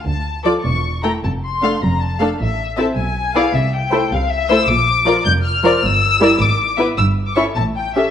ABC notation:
X:1
M:6/8
L:1/16
Q:3/8=104
K:Dm
V:1 name="Violin section"
a4 d'2 ^c'4 b2 | a2 c'4 b2 a2 a2 | e4 a2 ^g4 f2 | e2 g4 f2 e2 e'2 |
d'6 g'2 f'4 | e'6 d'4 z2 | e'3 d' ^c'2 a2 g2 e2 |]
V:2 name="Violin section"
z4 [Ad] z4 z [Ag] z | z4 [Af] z4 z [Af] z | z4 [Ae] z4 z [^Gd] z | z4 [Ac] z4 z [Ac] z |
z4 [Bd] z4 z [Bd] z | z4 [Bd] z4 z [=Be] z | z4 [Ae] z4 z [Ae] z |]
V:3 name="Viola section"
z4 [F,F] z4 z [A,E] z | z4 [A,D] z4 z [A,D] z | z4 [CE] z4 z [=B,E] z | z4 [A,E] z4 z [A,E] z |
z4 [F,F] z4 z [F,F] z | z4 [G,E] z4 z [=B,E] z | z4 [^CE] z4 z [CG] z |]
V:4 name="Cello section" clef=bass
D,,6 E,,6 | F,,6 F,,6 | A,,6 =B,,6 | C,6 C,6 |
B,,6 F,,6 | G,,6 ^G,,6 | G,,6 A,,6 |]
V:5 name="Double bass section" clef=bass
D,,6 E,,,6 | F,,,6 F,,,6 | A,,,6 =B,,,6 | C,,6 C,,6 |
B,,,6 F,,,6 | G,,,6 ^G,,,6 | G,,,6 A,,,6 |]